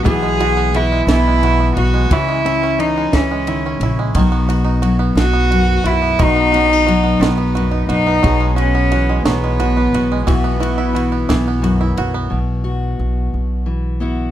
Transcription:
<<
  \new Staff \with { instrumentName = "Cello" } { \time 6/8 \key b \major \tempo 4. = 59 gis'4 e'8 e'4 fis'8 | e'4 dis'8 cis'4 r8 | r4. fis'4 e'8 | dis'4. b4 dis'8~ |
dis'8 cis'4 b4. | b2 r4 | r2. | }
  \new Staff \with { instrumentName = "Five-string banjo" } { \time 6/8 \key b \major e16 gis16 fis'16 b16 fis'16 gis16 e16 gis16 fis'16 b16 fis'16 gis16 | e16 gis16 e'16 cis'8 gis16 e16 gis16 e'16 cis'16 e'16 gis16 | dis16 b16 fis'16 dis'16 fis'16 b8 b16 fis'8 fis'16 b16 | dis16 b16 fis'16 dis'16 fis'16 b16 dis16 b16 fis'16 dis'16 fis'16 b16 |
fis16 gis16 fis'16 b16 fis'16 gis16 fis16 gis16 fis'16 b16 fis'16 gis16 | e16 b16 fis'16 e'16 fis'16 b16 e16 b16 fis'16 e'16 fis'16 b16 | r2. | }
  \new Staff \with { instrumentName = "Steel-string acoustic guitar" } { \clef bass \time 6/8 \key b \major << { <e b fis'>8 fis'4 b4. | cis'8 cis'2~ cis'8 | <fis b dis' fis'>4. b4. | fis'8 cis'16 dis'8. b4. |
gis'8 fis'4 b4. | fis'8 e'4 b4. | r8 fis'2 <b e' fis'>8 | } \\ { b,4 e4 b,4 | cis4 e8 e8 dis8 cis8 | b,4 fis4 fis,4 | b,4 fis4 fis,4 |
b,4 e4 b,4 | b,4 e4 fis,4 | b,2 e4 | } >> }
  \new Staff \with { instrumentName = "Upright bass" } { \clef bass \time 6/8 \key b \major b,,4. b,,4 b,,8 | cis,4. cis,4 ais,,8 | b,,4. b,,4 b,,8 | b,,4. b,,4 b,,8 |
b,,4. b,,4 b,,8 | b,,4. b,,4 b,,8 | b,,4 b,,8 b,,4. | }
  \new DrumStaff \with { instrumentName = "Drums" } \drummode { \time 6/8 <bd cymr>8 cymr8 cymr8 <cymr sn>8 cymr8 cymr8 | <bd cymr>8 cymr8 cymr8 <bd cymr sn>8 cymr8 cymr8 | <bd cymr>8 cymr8 cymr8 <cymr sn>8 cymr8 cymr8 | <bd cymr>8 cymr8 cymr8 <cymr sn>8 cymr8 cymr8 |
<bd cymr>8 cymr8 cymr8 <cymr sn>8 cymr8 cymr8 | <bd cymr>8 cymr8 cymr8 <bd cymr sn>8 cymr8 cymr8 | r4. r4. | }
>>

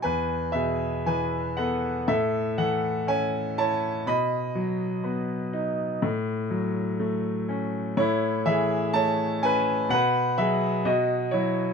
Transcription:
<<
  \new Staff \with { instrumentName = "Grand piano" } { \time 4/4 \key a \lydian \tempo 4 = 61 <b' gis''>8 <gis' e''>8 <b' gis''>8 <a' fis''>8 <a' e''>8 <a' fis''>8 <cis'' gis''>8 <cis'' a''>8 | <dis'' b''>2 r2 | <e' cis''>8 <gis' e''>8 <cis'' a''>8 <b' gis''>8 <b' fis''>8 <gis' e''>8 <fis' dis''>8 <e' cis''>8 | }
  \new Staff \with { instrumentName = "Grand piano" } { \clef bass \time 4/4 \key a \lydian e,8 b,8 e8 b8 a,8 e8 cis'8 e'8 | b,8 fis8 b8 dis'8 a,8 fis8 a8 cis'8 | a,8 e8 a8 cis'8 b,8 fis8 b,8 fis8 | }
>>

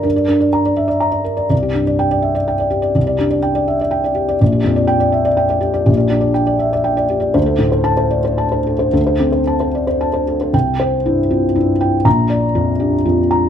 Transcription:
<<
  \new Staff \with { instrumentName = "Felt piano" } { \time 3/4 \key c \mixolydian \tempo 4 = 122 << { r2. | r4 g''8 r4. | r2. | r4 g''8 r4. |
r2. | r4 a''8 r4. | r2. | g''4 r2 |
bes''4 r2 | } \\ { <bes' d''>16 d''16 bes'16 d''16 bes''16 d''16 e''16 d''16 bes''16 d''16 bes'16 d''16 | d''16 g'16 g,16 d''8 d''16 e''16 d''16 g''16 d''16 g'16 d''16 | g'16 d''16 g'16 d''16 g''16 d''16 e''16 d''16 g''16 d''16 g'16 d''16 | d''16 g'16 f,16 d''8 d''16 e''16 d''16 g''16 d''16 g'16 d''16 |
g'16 d''16 g'16 d''16 g''16 d''16 e''16 d''16 g''16 d''16 g'16 d''16 | c''16 a'16 a,16 c''8 c''16 d''16 c''16 a''16 c''16 a'16 c''16 | a'16 c''16 a'16 c''16 a''16 c''16 d''16 c''16 a''16 c''16 a'16 c''16 | r8 c''8 e'8 f'8 e'8 g''8 |
r8 d''8 f'8 g'8 f'8 bes''8 | } >> }
  \new Staff \with { instrumentName = "Felt piano" } { \clef bass \time 3/4 \key c \mixolydian g,8 d'8 r2 | c,2. | c,8 d'8 r2 | bes,,2. |
bes,,8 d'8 r2 | d,2. | d,8 c'8 r2 | c,4 g,8 c'8 g,4 |
bes,,4 f,8 d'8 f,4 | }
>>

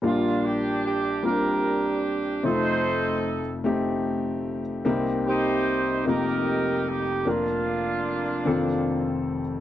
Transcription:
<<
  \new Staff \with { instrumentName = "Horn section" } { \time 6/8 \key bes \major \tempo 4. = 50 << { f'8 g'8 g'8 bes'4 r8 | c''4 r2 | r8 c''4 bes'4 g'8 | f'2~ f'8 r8 | } \\ { d'4. <d' g'>4. | <ees' a'>4. r4. | r8 <ees' g'>4 <ees' g'>4. | <bes d'>2~ <bes d'>8 r8 | } >> }
  \new Staff \with { instrumentName = "Grand piano" } { \time 6/8 \key bes \major <g bes d' f'>4 r8 <g bes c' d' f'>4 r8 | <a c' ees' f'>4 r8 <a c' ees' g'>4 r8 | <bes c' ees' g'>4 r8 <bes ees' f' g'>4 r8 | <bes d' f' bes'>4 r8 <ees c' f' a'>4 r8 | }
  \new Staff \with { instrumentName = "Grand piano" } { \clef bass \time 6/8 \key bes \major <bes,, bes,>2. | <f,, f,>2. | <c, c>4. <f,, f,>4. | <f,, f,>4. <f,, f,>4. | }
>>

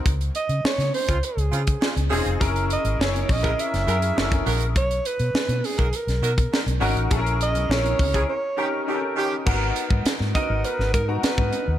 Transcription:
<<
  \new Staff \with { instrumentName = "Alto saxophone" } { \time 4/4 \key gis \minor \tempo 4 = 102 r8 dis''8 cis''8 bis'8 gis'4. r8 | r8 dis''8 cis''8 dis''8 e''4. r8 | cis''8 b'4 gis'8 ais'4. r8 | r8 dis''8 cis''4 cis''4 r4 |
r4. dis''8 b'8 ais'8 b'4 | }
  \new Staff \with { instrumentName = "Grand piano" } { \time 4/4 \key gis \minor r2. r8 <bis dis' eis' gis'>8 | <cis' e' gis' ais'>4 <cis' e' gis' cis''>8. <cis' e' gis' ais'>8. <cis' e' gis' ais'>8 <cis' e' gis' a' ais'>4 | r2. r8 <cis' dis' fis' ais'>8 | <cis' e' gis' a' ais'>4 <cis' e' gis' ais'>8. <cis' e' gis' ais'>16 r8 <cis' dis' g' ais'>8 <cis' dis' g' a' ais'>4 |
<b dis' fis' ais'>4~ <b dis' fis' ais'>16 r16 <b dis' fis' ais'>4 r16 <b dis' fis' ais''>4 r16 | }
  \new Staff \with { instrumentName = "Horn section" } { \time 4/4 \key gis \minor r4. r16 <cis bis eis'>16 r8 <cis bis eis'>16 r16 <cis bis eis'>16 r16 <eis cis' gis'>8 | r4. r16 <fis e' ais'>16 r8 <fis e' ais'>16 r16 <fis e' ais'>16 r16 <fis e' ais'>8 | r4. r16 <fis dis' ais'>16 r8 <fis dis' ais'>16 r16 <fis dis' ais'>16 r16 <fis dis' ais'>8 | r4. r16 <e cis' gis'>16 r8 <dis cis' g'>16 r16 <dis cis' g'>16 r16 <dis cis' g'>8 |
r1 | }
  \new Staff \with { instrumentName = "Fingered electric bass" } { \clef bass \time 4/4 \key gis \minor cis,8 r16 cis16 r16 cis16 r16 cis,16 r16 cis,16 cis8 r16 cis,16 r16 eis,,16 | fis,,8. gis,,16 fis,,8 ais,,8 r16 fis,,16 fis,8 fis,,8 ais,,8 | b,,8 r16 b,16 r16 b,16 r16 b,,16 r16 b,,16 b,8 r16 b,,16 gis,,16 a,,16 | ais,,8. b,,16 ais,,8 cis,8 r2 |
gis,,8 r16 gis,16 r16 gis,16 r16 gis,,16 r16 gis,,16 gis,8 r16 gis,16 r16 dis,16 | }
  \new DrumStaff \with { instrumentName = "Drums" } \drummode { \time 4/4 <hh bd>16 hh16 hh16 hh16 sn16 <hh sn>16 hho16 <hh bd>16 hh16 hh16 hh16 <hh bd>16 sn16 hh16 hho16 hh16 | <hh bd>16 hh16 hh16 hh16 sn16 hh16 <hho bd>16 <hh bd>16 hh16 <hh sn>16 hh16 hh16 sn16 <hh bd>16 hho16 hh16 | <hh bd>16 hh16 hh16 hh16 sn16 hh16 hho16 <hh bd>16 hh16 <hh sn>16 hh16 <hh bd>16 sn16 hh16 hho16 hh16 | <hh bd>16 hh16 hh16 hh16 sn16 hh16 <hho bd>16 <hh bd>16 r4 r4 |
<cymc bd>8 hh16 bd16 <hh sn>16 sn16 <hh bd>8 hh16 sn16 <hh bd>8 <hh sn>16 bd16 hh8 | }
>>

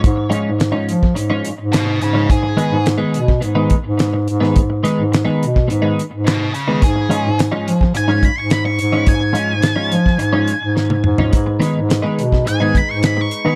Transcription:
<<
  \new Staff \with { instrumentName = "Lead electric guitar" } { \time 4/4 \key gis \dorian \tempo 4 = 106 r2. <b' dis''>8 <gis' cis''>8 | gis'4 r2. | r2. <b' dis''>8 <gis' cis''>8 | gis'4 r4 gis''8 b''16 cis'''16 b''16 cis'''8. |
gis''2. r4 | r2 gis''8 b''16 cis'''16 b''16 cis'''8. | }
  \new Staff \with { instrumentName = "Tonewheel organ" } { \time 4/4 \key gis \dorian r1 | r1 | r1 | r1 |
r1 | <gis dis' b'>1 | }
  \new Staff \with { instrumentName = "Clean electric guitar" } { \time 4/4 \key gis \dorian r8 <gis, eis cis' dis'>16 r8 <gis, eis cis' dis'>16 r8. <gis, eis cis' dis'>16 r4 r16 <gis, eis cis' dis'>16 | r8 <dis gis b dis'>16 r8 <dis gis b dis'>16 r8. <dis gis b dis'>16 r4 r16 <dis gis b dis'>16 | r8 <dis gis b dis'>16 r8 <dis gis b dis'>16 r8. <dis gis b dis'>16 r4 r16 <dis gis b dis'>16 | r8 <gis, eis cis' dis'>16 r8 <gis, eis cis' dis'>16 r8. <gis, eis cis' dis'>16 r4 r16 <gis, eis cis' dis'>16 |
r8 <gis, eis cis' dis'>16 r8 <gis, eis cis' dis'>16 r8. <gis, eis cis' dis'>16 r4 r16 <gis, eis cis' dis'>16 | r8 <dis gis b dis'>16 r8 <dis gis b dis'>16 r8. <dis gis b dis'>16 r4 r16 <dis gis b dis'>16 | }
  \new Staff \with { instrumentName = "Bass clarinet" } { \clef bass \time 4/4 \key gis \dorian gis,8 r16 gis,8 r16 eis8 gis,8 r16 gis,8. gis,8 | gis,8 r16 gis,8 r16 b,8 gis,8 r16 gis,8. gis,8 | gis,8 r16 gis,8 r16 b,8 gis,8 r16 gis,8. r8 | gis,8 r16 gis,8 r16 eis8 gis,8 r16 gis,8. gis,8 |
gis,8 r16 gis,8 r16 eis8 gis,8 r16 gis,8. gis,8 | gis,8 r16 gis,8 r16 b,8 gis,8 r16 gis,8. r8 | }
  \new DrumStaff \with { instrumentName = "Drums" } \drummode { \time 4/4 <hh bd>8 hh8 <hh sn>8 hh16 bd16 hh8 hh8 <hh sn>8 hh8 | <hh bd>8 hh8 <hh sn>8 hh16 bd16 hh8 <hh bd>8 <hh sn>8 hh16 sn16 | <hh bd>8 <hh sn>8 <hh sn>8 hh16 bd16 hh8 hh8 <hh sn>8 hh8 | <hh bd>8 hh8 <hh sn>8 hh16 bd16 hh8 <hh bd>8 <hh sn>8 hh8 |
<hh bd>8 hh8 <hh sn>8 hh16 <bd sn>16 hh8 hh8 sn16 tommh16 toml16 tomfh16 | <hh bd>8 <hh sn>8 <hh sn>8 hh16 <bd sn>16 hh8 <hh bd>8 <hh sn>8 hh8 | }
>>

